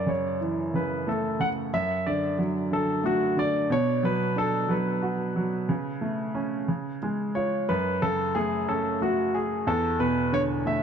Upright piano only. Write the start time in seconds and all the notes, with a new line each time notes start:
Already playing: F#2
0.06 C#3
0.40 E3
0.74 C#3
1.07 A3
1.40 C#3
1.73 F#2
2.07 D3
2.38 F#3
2.71 D3
3.04 A3
3.36 D3
3.70 B2
4.03 F#3
4.36 D4
4.68 F#3
5.02 F#4
5.36 F#3
5.69 C#3
6.01 A3
6.35 C#4
6.68 C#3
7.03 G#3
7.36 F4
7.69 F#2
8.02 C#3
8.35 A3
8.68 C#4
9.01 A3
9.67 E2
9.99 B2
10.32 D3
10.66 A3